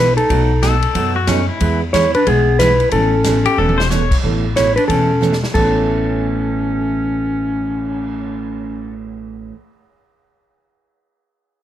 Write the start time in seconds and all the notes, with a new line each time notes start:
Already playing: B1 E4 B4
0.16 D#4 A4, ride
0.29 B1 B2 F#3 A3 D#4 F#4, kick, ride
0.62 B2 F#3 A3 D#4 F#4 A4, kick, snare, hi-hat pedal, ride
0.82 ride
0.95 F#2 B2 F#3 A3 D#4 F#4, kick, ride
1.16 F#4
1.27 B2 F#3 A3 C#4 D#4 F#4, kick, snare, hi-hat pedal, ride
1.49 E4
1.60 E2 E3 G#3 B3 E4 G#4, kick, ride
1.93 E3 G#3 B3 E4 G#4 C#5, kick, snare, hi-hat pedal, ride
2.14 D4 B4, ride
2.26 B1 E3 G#3 B3 E4 G#4, kick, ride
2.59 E3 G#3 B3 E4 G#4 B4, kick, snare, hi-hat pedal, ride
2.80 ride
2.91 A1 B2 E3 A3 C#4 A4, kick, ride
3.24 B2 E3 A3 C#4 A4, kick, snare, hi-hat pedal, ride
3.45 G4, ride
3.58 E1 B2 E3 A3 C#4 A4
3.69 high tom
3.78 C5, snare
3.90 B2 E3 A3 C#4 A4 C#5, snare, hi-hat pedal
4.11 kick, crash
4.23 A1 B2 E3 A3 C#4 A4
4.56 B2 E3 A3 C#4 E4 A4 C#5, kick, snare, hi-hat pedal, ride
4.76 D4 B4, ride
4.88 E1 B2 E3 A3 C#4 A4, kick, ride
5.21 B2 E3 A3 C#4 A4, hi-hat pedal
5.33 snare
5.44 snare
5.53 A1 A2 B2 E3 A3 C#4 A4, kick, crash
5.75 cymbal swell